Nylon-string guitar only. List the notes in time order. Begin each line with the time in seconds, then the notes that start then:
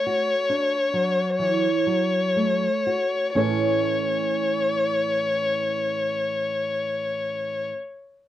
Already playing: A3
0.07 F#4
0.50 D4
0.94 F#3
1.39 E3
1.86 F#3
2.36 A3
2.86 F#4
3.35 A2 E3 C#4 E4 A4 C#5